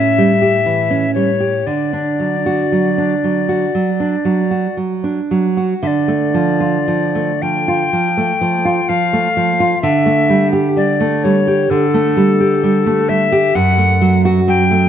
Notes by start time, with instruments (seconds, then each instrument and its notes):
Already playing: nylon-string guitar A2 C#4, recorder E5
0.18 nylon-string guitar G3
0.42 nylon-string guitar G4
0.66 nylon-string guitar E3
0.90 nylon-string guitar C#4
1.14 nylon-string guitar G3, recorder C#5
1.40 nylon-string guitar G4
1.66 nylon-string guitar D3, recorder D5
1.93 nylon-string guitar D4
2.20 nylon-string guitar F#3
2.46 nylon-string guitar F#4
2.72 nylon-string guitar F#3
2.98 nylon-string guitar D4
3.24 nylon-string guitar F#3
3.49 nylon-string guitar F#4
3.75 nylon-string guitar F#3
4.00 nylon-string guitar D4
4.25 nylon-string guitar F#3
4.51 nylon-string guitar F#4
4.77 nylon-string guitar F#3
5.04 nylon-string guitar D4
5.31 nylon-string guitar F#3
5.57 nylon-string guitar F#4
5.82 nylon-string guitar D3, recorder E5
5.87 recorder D5
6.08 nylon-string guitar A3
6.34 nylon-string guitar F3
6.60 nylon-string guitar F4
6.88 nylon-string guitar F3
7.15 nylon-string guitar A3
7.42 nylon-string guitar F3, recorder G5
7.68 nylon-string guitar F4
7.93 nylon-string guitar F3
8.17 nylon-string guitar A3
8.41 nylon-string guitar F3
8.65 nylon-string guitar F4
8.89 nylon-string guitar F3, recorder F5
9.13 nylon-string guitar A3
9.37 nylon-string guitar F3
9.60 nylon-string guitar F4
9.82 nylon-string guitar D3, recorder E5
10.06 nylon-string guitar A3
10.29 nylon-string guitar G3
10.53 nylon-string guitar G4
10.77 nylon-string guitar G3, recorder D5
11.00 nylon-string guitar A3
11.24 nylon-string guitar G3, recorder C#5
11.47 nylon-string guitar G4
11.70 nylon-string guitar D3, recorder A4
11.94 nylon-string guitar A3
12.17 nylon-string guitar G3
12.40 nylon-string guitar G4
12.63 nylon-string guitar G3
12.86 nylon-string guitar A3
13.09 nylon-string guitar G3, recorder E5
13.32 nylon-string guitar G4
13.55 nylon-string guitar F#2, recorder F#5
13.78 nylon-string guitar A3
14.01 nylon-string guitar F#3
14.25 nylon-string guitar F#4
14.48 nylon-string guitar F#3, recorder G5
14.71 nylon-string guitar A3